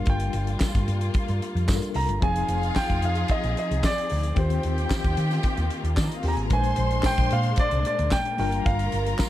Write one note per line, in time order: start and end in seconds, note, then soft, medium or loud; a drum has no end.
0.00 1.65 G3 medium
0.00 2.20 G3 medium
0.00 2.20 A#3 medium
0.00 1.65 D4 medium
0.00 1.66 F4 medium
0.00 2.20 F4 medium
0.00 1.66 A#4 medium
0.06 0.28 G1 loud
0.06 1.12 G5 medium
0.06 kick loud
0.06 closed hi-hat medium
0.20 closed hi-hat medium
0.33 0.55 G1 medium
0.33 closed hi-hat medium
0.47 closed hi-hat soft
0.60 kick loud
0.60 snare loud
0.60 clap medium
0.60 tambourine loud
0.75 0.85 G1 medium
0.75 kick loud
0.75 closed hi-hat medium
0.88 1.09 G2 loud
0.88 closed hi-hat medium
1.01 closed hi-hat soft
1.14 kick loud
1.14 closed hi-hat medium
1.28 1.39 G2 loud
1.28 closed hi-hat soft
1.42 closed hi-hat medium
1.55 1.65 F2 medium
1.55 closed hi-hat soft
1.67 1.79 G2 medium
1.67 2.22 G3 medium
1.67 2.22 D4 medium
1.67 2.22 F4 medium
1.67 1.75 A4 soft
1.67 kick loud
1.67 snare loud
1.67 clap medium
1.67 tambourine loud
1.76 2.26 A#4 medium
1.82 closed hi-hat medium
1.94 2.05 C2 medium
1.94 2.23 A#5 loud
1.94 open hi-hat medium
2.09 2.19 G1 loud
2.09 closed hi-hat medium
2.20 2.43 F1 loud
2.20 4.34 F3 medium
2.20 4.32 F3 medium
2.20 6.46 C4 medium
2.20 4.33 C4 medium
2.20 4.34 D#4 medium
2.20 4.33 D#4 medium
2.20 4.06 F4 loud
2.20 4.33 G#4 loud
2.20 4.06 F5 loud
2.20 2.73 G#5 loud
2.20 kick loud
2.20 closed hi-hat medium
2.24 4.34 G#4 medium
2.36 closed hi-hat medium
2.48 2.69 F1 loud
2.48 closed hi-hat medium
2.63 closed hi-hat soft
2.76 3.01 G5 loud
2.76 kick loud
2.76 snare loud
2.76 clap medium
2.76 tambourine loud
2.90 3.00 F1 medium
2.90 kick loud
2.90 closed hi-hat medium
3.02 3.23 F2 medium
3.02 3.32 F5 medium
3.02 closed hi-hat medium
3.15 closed hi-hat soft
3.28 3.57 D#5 loud
3.28 kick loud
3.28 closed hi-hat medium
3.44 3.54 A#1 loud
3.44 closed hi-hat soft
3.57 3.85 D#5 medium
3.57 closed hi-hat medium
3.71 3.81 C2 medium
3.71 closed hi-hat medium
3.83 4.39 D5 loud
3.83 kick loud
3.83 snare loud
3.83 clap medium
3.83 tambourine loud
3.98 closed hi-hat medium
4.10 4.31 D2 medium
4.10 open hi-hat medium
4.23 closed hi-hat medium
4.35 4.57 D#2 loud
4.35 6.20 D#3 medium
4.35 6.48 D#3 medium
4.35 9.29 A#3 medium
4.35 6.20 C4 medium
4.35 6.49 F4 medium
4.35 6.21 F4 medium
4.35 5.88 G4 loud
4.35 6.21 G4 medium
4.35 5.41 C5 medium
4.35 5.88 G5 loud
4.35 kick loud
4.35 closed hi-hat medium
4.50 closed hi-hat medium
4.63 4.84 D#2 loud
4.63 closed hi-hat medium
4.78 closed hi-hat soft
4.90 kick loud
4.90 snare loud
4.90 clap medium
4.90 tambourine loud
5.04 5.15 D#2 medium
5.04 kick loud
5.04 closed hi-hat medium
5.17 5.38 D#3 medium
5.17 closed hi-hat medium
5.31 snare soft
5.31 closed hi-hat soft
5.43 kick loud
5.43 closed hi-hat medium
5.57 5.68 D#2 loud
5.57 closed hi-hat soft
5.70 closed hi-hat medium
5.84 5.94 D#2 medium
5.84 closed hi-hat medium
5.97 6.08 D#3 loud
5.97 6.06 D4 medium
5.97 6.06 D5 medium
5.97 kick loud
5.97 snare loud
5.97 clap loud
5.97 tambourine loud
6.06 6.15 D#4 medium
6.06 6.16 D#5 medium
6.11 closed hi-hat medium
6.15 6.25 F4 medium
6.15 6.24 F5 medium
6.23 6.34 D#2 medium
6.23 6.50 D#3 medium
6.23 6.51 C4 soft
6.23 6.51 F4 soft
6.23 6.51 G4 medium
6.23 6.34 G4 medium
6.23 6.34 G5 medium
6.23 open hi-hat medium
6.28 6.34 A#5 medium
6.33 6.51 G#1 loud
6.33 6.42 G#4 medium
6.33 6.42 G#5 medium
6.37 closed hi-hat soft
6.43 6.52 A#4 medium
6.43 6.52 A#5 medium
6.50 6.71 A#1 loud
6.50 8.34 A#2 medium
6.50 8.35 G#3 medium
6.50 8.38 G#3 medium
6.50 8.36 D4 medium
6.50 8.38 D4 medium
6.50 6.59 B4 medium
6.50 8.09 C5 loud
6.50 7.07 G#5 medium
6.50 8.09 C6 loud
6.50 kick loud
6.50 closed hi-hat medium
6.59 8.39 C5 medium
6.64 closed hi-hat medium
6.76 6.98 A#1 loud
6.76 closed hi-hat medium
6.91 closed hi-hat medium
7.03 7.33 G5 loud
7.03 kick loud
7.03 snare loud
7.03 clap medium
7.03 tambourine loud
7.18 7.28 A#1 medium
7.18 kick loud
7.18 closed hi-hat medium
7.31 7.52 A#2 medium
7.31 7.60 F5 medium
7.31 closed hi-hat medium
7.43 closed hi-hat soft
7.56 7.85 D5 loud
7.56 kick loud
7.56 closed hi-hat loud
7.71 7.82 C2 medium
7.71 closed hi-hat soft
7.85 8.13 D5 medium
7.85 closed hi-hat medium
7.99 8.09 D2 medium
7.99 closed hi-hat medium
8.11 8.38 G5 loud
8.11 kick loud
8.11 snare loud
8.11 clap medium
8.11 tambourine loud
8.25 closed hi-hat medium
8.38 8.59 G1 medium
8.38 9.29 G3 medium
8.38 9.29 D4 medium
8.38 9.29 F4 medium
8.38 9.29 F4 loud
8.38 9.29 A#4 loud
8.38 9.29 A#4 medium
8.38 8.67 G5 medium
8.38 9.29 A#5 loud
8.38 open hi-hat medium
8.52 closed hi-hat medium
8.66 8.87 G1 loud
8.66 9.29 F5 medium
8.66 kick loud
8.66 closed hi-hat medium
8.79 closed hi-hat medium
8.92 9.13 G1 loud
8.92 closed hi-hat medium
9.06 closed hi-hat medium
9.19 kick loud
9.19 snare loud
9.19 clap loud
9.19 tambourine loud